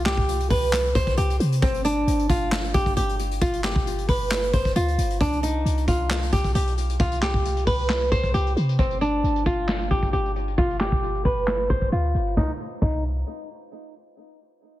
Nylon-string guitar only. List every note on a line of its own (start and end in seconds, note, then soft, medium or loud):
0.06 0.48 G4 medium
0.50 0.93 B4 medium
0.95 1.13 C5 medium
1.18 1.35 G4 medium
1.62 1.80 C4 loud
1.85 2.27 D4 medium
2.29 2.72 F4 medium
2.74 2.92 G4 medium
2.97 3.15 G4 medium
3.42 3.59 F4 loud
3.64 4.06 G4 medium
4.09 4.51 B4 medium
4.54 4.71 C5 medium
4.76 5.18 F4 medium
5.21 5.38 D4 medium
5.43 5.85 D#4 medium
5.88 6.30 F4 medium
6.33 6.50 G4 medium
6.55 6.73 G4 medium
7.00 7.18 F4 loud
7.22 7.64 G4 medium
7.67 8.09 B4 medium
8.12 8.30 C5 medium
8.34 8.52 G4 medium
8.79 8.97 C4 loud
9.01 9.43 D4 medium
9.46 9.88 F4 medium
9.91 10.09 G4 medium
10.13 10.31 G4 medium
10.58 10.76 F4 loud
10.80 11.22 G4 medium
11.25 11.67 B4 medium
11.70 11.88 C5 medium
11.92 12.34 F4 medium
12.37 12.50 D#4 medium
12.82 13.03 D#4 medium